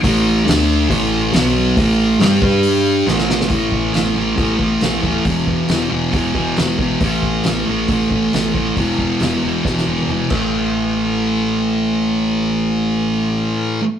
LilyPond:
<<
  \new Staff \with { instrumentName = "Distorted electric guitar" } { \clef bass \time 4/4 \key e \mixolydian \tempo 4 = 137 <a, e a>4 <d a d'>4 <a, e a>4 <b, fis b>4 | <a, e a>4 <g d' g'>8 <g d' g'>4. <a, e a>4 | <a, e a>4 <a, e a>8 <e a>8 <a, e a>8 <e a>4 <e a>8 | <e, b, e>4 <e, b, e>8 <b, e>8 <e, b, e>8 <b, e>4 <b, e>8 |
<a, e a>4 <a, e a>8 <e a>8 <a, e a>8 <e a>4 <e a>8 | <e, b, e>4 <e, b, e>8 <b, e>8 <e, b, e>8 <b, e>4 <a, e a>8~ | <a, e a>1~ | <a, e a>1 | }
  \new Staff \with { instrumentName = "FM bass" } { \clef bass \time 4/4 \key e \mixolydian a,,4 d,4 a,,4 b,,4 | a,,4 g,8 g,4. a,,4 | a,,8 a,,8 a,,8 a,,8 a,,8 a,,8 a,,8 d,,8 | e,,8 e,,8 e,,8 e,,8 e,,8 e,,8 e,,8 gis,,8 |
a,,8 a,,8 a,,8 a,,8 a,,8 a,,8 a,,8 a,,8 | e,,8 e,,8 e,,8 e,,8 e,,8 e,,8 e,,8 a,,8~ | a,,1~ | a,,1 | }
  \new DrumStaff \with { instrumentName = "Drums" } \drummode { \time 4/4 <hho bd>4 <hho sn>4 <hho bd>4 <hho sn>4 | <hho bd>4 <hho sn>8 bd8 hho4 sn16 sn16 sn16 sn16 | <hho bd>8 bd8 <hho sn>4 <hho bd>8 bd8 <hho sn>8 bd8 | <hho bd>8 bd8 <hho sn>4 <hho bd>8 bd8 <hho sn>8 bd8 |
<hho bd>8 bd8 <hho sn>4 <hho bd>8 bd8 <hho sn>8 bd8 | <hho bd>8 bd8 <hho sn>4 <bd sn>16 sn8 tommh16 toml8 <cymc bd>8 | r4 r4 r4 r4 | r4 r4 r4 r4 | }
>>